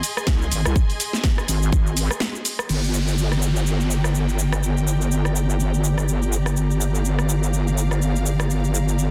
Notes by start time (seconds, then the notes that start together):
Already playing: G#4 D#5 G#5 C6
0.03 open hi-hat, shaker
0.17 cross-stick, shaker
0.27 C2, kick, snare, shaker
0.42 shaker
0.52 G#1, open hi-hat, shaker
0.65 C2, cross-stick, shaker
0.76 kick, shaker
0.90 open hi-hat, shaker
1.00 open hi-hat, shaker
1.13 snare, shaker
1.24 kick, snare, shaker
1.38 cross-stick, shaker
1.48 G#1, open hi-hat, shaker
1.63 shaker
1.73 G#1, kick, shaker
1.87 shaker
1.97 open hi-hat, shaker
2.11 cross-stick, shaker
2.20 snare, shaker
2.35 shaker
2.45 open hi-hat, shaker
2.59 cross-stick, shaker
2.69 G1 G4, crash, downlifter, shaker
2.82 D5, shaker
2.91 G5, shaker
3.08 shaker
3.13 A#5
3.18 shaker
3.32 cross-stick, shaker
3.42 shaker
3.56 shaker
3.67 shaker
3.81 shaker
3.91 shaker
4.04 cross-stick, shaker
4.15 shaker
4.29 shaker
4.39 shaker
4.53 cross-stick, shaker
4.63 shaker
4.77 shaker
4.87 shaker
5.01 shaker
5.12 shaker
5.25 cross-stick, shaker
5.36 shaker
5.50 shaker
5.60 shaker
5.74 shaker
5.84 shaker
5.98 cross-stick, shaker
6.08 shaker
6.22 shaker
6.33 shaker
6.46 cross-stick, shaker
6.56 riser, shaker
6.71 shaker
6.81 shaker
6.89 F5
6.95 shaker
7.05 shaker
7.19 cross-stick, shaker
7.29 shaker
7.43 shaker
7.54 shaker
7.68 shaker
7.78 shaker
7.91 cross-stick, shaker
8.02 shaker
8.16 shaker
8.26 shaker
8.40 cross-stick, shaker
8.50 shaker
8.64 shaker
8.75 shaker
8.89 shaker
8.99 shaker